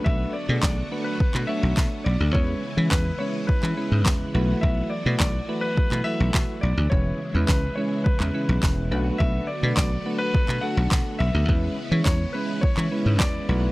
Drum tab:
CP |----x----x--x---|----x----x--x---|----x----x--x---|----x----x--x---|
SD |----o-------o---|----o-------o---|----o-------o---|----o-------o---|
BD |o---o---o---o---|o---o---o---o---|o---o---o---o---|o---o---o---o---|

CP |----x----x--x---|----x----x--x---|
SD |----o-------o---|----o-------o---|
BD |o---o---o---o---|o---o---o---o---|